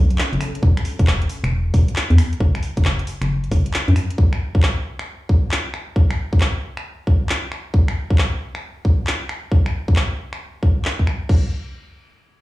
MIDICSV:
0, 0, Header, 1, 5, 480
1, 0, Start_track
1, 0, Tempo, 444444
1, 676, Time_signature, 4, 2, 24, 8
1, 13406, End_track
2, 0, Start_track
2, 0, Title_t, "String machine"
2, 0, Program_c, 0, 50
2, 0, Note_on_c, 0, 61, 82
2, 0, Note_on_c, 0, 62, 76
2, 0, Note_on_c, 0, 66, 74
2, 0, Note_on_c, 0, 69, 90
2, 402, Note_off_c, 0, 61, 0
2, 403, Note_off_c, 0, 69, 0
2, 640, Note_off_c, 0, 62, 0
2, 640, Note_off_c, 0, 66, 0
2, 13406, End_track
3, 0, Start_track
3, 0, Title_t, "FM bass"
3, 0, Program_c, 1, 39
3, 353, Note_on_c, 1, 30, 89
3, 418, Note_off_c, 1, 30, 0
3, 676, Note_on_c, 1, 28, 95
3, 798, Note_off_c, 1, 28, 0
3, 1072, Note_on_c, 1, 28, 80
3, 1366, Note_off_c, 1, 28, 0
3, 1552, Note_on_c, 1, 28, 96
3, 1846, Note_off_c, 1, 28, 0
3, 1876, Note_on_c, 1, 28, 101
3, 1998, Note_off_c, 1, 28, 0
3, 2271, Note_on_c, 1, 40, 89
3, 2337, Note_off_c, 1, 40, 0
3, 2596, Note_on_c, 1, 30, 100
3, 2717, Note_off_c, 1, 30, 0
3, 2992, Note_on_c, 1, 30, 78
3, 3286, Note_off_c, 1, 30, 0
3, 3473, Note_on_c, 1, 30, 93
3, 3766, Note_off_c, 1, 30, 0
3, 3796, Note_on_c, 1, 30, 98
3, 3917, Note_off_c, 1, 30, 0
3, 4191, Note_on_c, 1, 42, 87
3, 4257, Note_off_c, 1, 42, 0
3, 13406, End_track
4, 0, Start_track
4, 0, Title_t, "Downlifter"
4, 0, Program_c, 2, 103
4, 0, Note_on_c, 2, 60, 75
4, 677, Note_off_c, 2, 60, 0
4, 13406, End_track
5, 0, Start_track
5, 0, Title_t, "Drums"
5, 114, Note_on_c, 9, 42, 62
5, 198, Note_on_c, 9, 39, 121
5, 222, Note_off_c, 9, 42, 0
5, 306, Note_off_c, 9, 39, 0
5, 355, Note_on_c, 9, 42, 35
5, 438, Note_on_c, 9, 26, 70
5, 438, Note_on_c, 9, 46, 101
5, 463, Note_off_c, 9, 42, 0
5, 546, Note_off_c, 9, 26, 0
5, 546, Note_off_c, 9, 46, 0
5, 595, Note_on_c, 9, 42, 62
5, 677, Note_on_c, 9, 36, 123
5, 703, Note_off_c, 9, 42, 0
5, 785, Note_off_c, 9, 36, 0
5, 835, Note_on_c, 9, 26, 64
5, 835, Note_on_c, 9, 42, 45
5, 918, Note_on_c, 9, 46, 103
5, 943, Note_off_c, 9, 26, 0
5, 943, Note_off_c, 9, 42, 0
5, 1026, Note_off_c, 9, 46, 0
5, 1073, Note_on_c, 9, 36, 109
5, 1074, Note_on_c, 9, 42, 60
5, 1157, Note_on_c, 9, 39, 122
5, 1181, Note_off_c, 9, 36, 0
5, 1182, Note_off_c, 9, 42, 0
5, 1265, Note_off_c, 9, 39, 0
5, 1314, Note_on_c, 9, 42, 47
5, 1398, Note_on_c, 9, 46, 102
5, 1422, Note_off_c, 9, 42, 0
5, 1506, Note_off_c, 9, 46, 0
5, 1556, Note_on_c, 9, 26, 71
5, 1556, Note_on_c, 9, 42, 62
5, 1664, Note_off_c, 9, 26, 0
5, 1664, Note_off_c, 9, 42, 0
5, 1877, Note_on_c, 9, 36, 107
5, 1878, Note_on_c, 9, 46, 97
5, 1985, Note_off_c, 9, 36, 0
5, 1986, Note_off_c, 9, 46, 0
5, 2035, Note_on_c, 9, 42, 59
5, 2116, Note_on_c, 9, 39, 114
5, 2143, Note_off_c, 9, 42, 0
5, 2224, Note_off_c, 9, 39, 0
5, 2273, Note_on_c, 9, 42, 34
5, 2358, Note_on_c, 9, 26, 67
5, 2358, Note_on_c, 9, 46, 99
5, 2381, Note_off_c, 9, 42, 0
5, 2466, Note_off_c, 9, 26, 0
5, 2466, Note_off_c, 9, 46, 0
5, 2514, Note_on_c, 9, 42, 58
5, 2597, Note_on_c, 9, 36, 122
5, 2622, Note_off_c, 9, 42, 0
5, 2705, Note_off_c, 9, 36, 0
5, 2754, Note_on_c, 9, 26, 59
5, 2754, Note_on_c, 9, 42, 49
5, 2837, Note_on_c, 9, 46, 98
5, 2862, Note_off_c, 9, 26, 0
5, 2862, Note_off_c, 9, 42, 0
5, 2945, Note_off_c, 9, 46, 0
5, 2993, Note_on_c, 9, 36, 108
5, 2993, Note_on_c, 9, 42, 63
5, 3076, Note_on_c, 9, 39, 119
5, 3101, Note_off_c, 9, 36, 0
5, 3101, Note_off_c, 9, 42, 0
5, 3184, Note_off_c, 9, 39, 0
5, 3233, Note_on_c, 9, 42, 50
5, 3316, Note_on_c, 9, 46, 102
5, 3341, Note_off_c, 9, 42, 0
5, 3424, Note_off_c, 9, 46, 0
5, 3473, Note_on_c, 9, 26, 69
5, 3473, Note_on_c, 9, 42, 62
5, 3581, Note_off_c, 9, 26, 0
5, 3581, Note_off_c, 9, 42, 0
5, 3713, Note_on_c, 9, 42, 33
5, 3796, Note_on_c, 9, 46, 97
5, 3797, Note_on_c, 9, 36, 103
5, 3821, Note_off_c, 9, 42, 0
5, 3904, Note_off_c, 9, 46, 0
5, 3905, Note_off_c, 9, 36, 0
5, 3952, Note_on_c, 9, 42, 59
5, 4036, Note_on_c, 9, 39, 118
5, 4060, Note_off_c, 9, 42, 0
5, 4144, Note_off_c, 9, 39, 0
5, 4192, Note_on_c, 9, 42, 34
5, 4276, Note_on_c, 9, 26, 64
5, 4276, Note_on_c, 9, 46, 100
5, 4300, Note_off_c, 9, 42, 0
5, 4384, Note_off_c, 9, 26, 0
5, 4384, Note_off_c, 9, 46, 0
5, 4433, Note_on_c, 9, 42, 62
5, 4516, Note_on_c, 9, 36, 121
5, 4541, Note_off_c, 9, 42, 0
5, 4624, Note_off_c, 9, 36, 0
5, 4673, Note_on_c, 9, 26, 59
5, 4781, Note_off_c, 9, 26, 0
5, 4912, Note_on_c, 9, 36, 105
5, 4996, Note_on_c, 9, 39, 112
5, 5020, Note_off_c, 9, 36, 0
5, 5104, Note_off_c, 9, 39, 0
5, 5393, Note_on_c, 9, 26, 62
5, 5501, Note_off_c, 9, 26, 0
5, 5716, Note_on_c, 9, 36, 101
5, 5824, Note_off_c, 9, 36, 0
5, 5956, Note_on_c, 9, 39, 115
5, 6064, Note_off_c, 9, 39, 0
5, 6197, Note_on_c, 9, 26, 62
5, 6305, Note_off_c, 9, 26, 0
5, 6436, Note_on_c, 9, 36, 110
5, 6544, Note_off_c, 9, 36, 0
5, 6594, Note_on_c, 9, 26, 59
5, 6702, Note_off_c, 9, 26, 0
5, 6833, Note_on_c, 9, 36, 98
5, 6919, Note_on_c, 9, 39, 106
5, 6941, Note_off_c, 9, 36, 0
5, 7027, Note_off_c, 9, 39, 0
5, 7314, Note_on_c, 9, 26, 64
5, 7422, Note_off_c, 9, 26, 0
5, 7637, Note_on_c, 9, 36, 93
5, 7745, Note_off_c, 9, 36, 0
5, 7877, Note_on_c, 9, 39, 107
5, 7985, Note_off_c, 9, 39, 0
5, 8118, Note_on_c, 9, 26, 64
5, 8226, Note_off_c, 9, 26, 0
5, 8357, Note_on_c, 9, 36, 106
5, 8465, Note_off_c, 9, 36, 0
5, 8514, Note_on_c, 9, 26, 60
5, 8622, Note_off_c, 9, 26, 0
5, 8753, Note_on_c, 9, 36, 97
5, 8837, Note_on_c, 9, 39, 104
5, 8861, Note_off_c, 9, 36, 0
5, 8945, Note_off_c, 9, 39, 0
5, 9233, Note_on_c, 9, 26, 63
5, 9341, Note_off_c, 9, 26, 0
5, 9557, Note_on_c, 9, 36, 93
5, 9665, Note_off_c, 9, 36, 0
5, 9796, Note_on_c, 9, 39, 106
5, 9904, Note_off_c, 9, 39, 0
5, 10037, Note_on_c, 9, 26, 60
5, 10145, Note_off_c, 9, 26, 0
5, 10277, Note_on_c, 9, 36, 108
5, 10385, Note_off_c, 9, 36, 0
5, 10434, Note_on_c, 9, 26, 62
5, 10542, Note_off_c, 9, 26, 0
5, 10672, Note_on_c, 9, 36, 97
5, 10757, Note_on_c, 9, 39, 108
5, 10780, Note_off_c, 9, 36, 0
5, 10865, Note_off_c, 9, 39, 0
5, 11154, Note_on_c, 9, 26, 64
5, 11262, Note_off_c, 9, 26, 0
5, 11477, Note_on_c, 9, 36, 96
5, 11585, Note_off_c, 9, 36, 0
5, 11717, Note_on_c, 9, 39, 103
5, 11825, Note_off_c, 9, 39, 0
5, 11873, Note_on_c, 9, 36, 54
5, 11958, Note_on_c, 9, 26, 63
5, 11981, Note_off_c, 9, 36, 0
5, 12066, Note_off_c, 9, 26, 0
5, 12196, Note_on_c, 9, 36, 112
5, 12197, Note_on_c, 9, 49, 81
5, 12304, Note_off_c, 9, 36, 0
5, 12305, Note_off_c, 9, 49, 0
5, 13406, End_track
0, 0, End_of_file